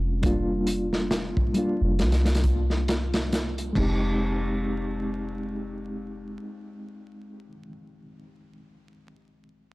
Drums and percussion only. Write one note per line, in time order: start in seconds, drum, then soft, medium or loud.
0.23 kick loud
0.23 closed hi-hat medium
0.67 closed hi-hat medium
0.93 snare soft
1.11 snare loud
1.11 closed hi-hat medium
1.37 kick medium
1.54 closed hi-hat medium
1.99 snare medium
1.99 closed hi-hat medium
2.12 snare medium
2.12 closed hi-hat medium
2.25 snare medium
2.25 closed hi-hat medium
2.35 snare medium
2.35 closed hi-hat medium
2.44 kick medium
2.44 closed hi-hat medium
2.70 snare soft
2.88 snare medium
2.88 closed hi-hat medium
3.14 snare medium
3.14 closed hi-hat medium
3.33 snare medium
3.33 closed hi-hat medium
3.58 closed hi-hat soft
3.75 kick medium
3.75 crash medium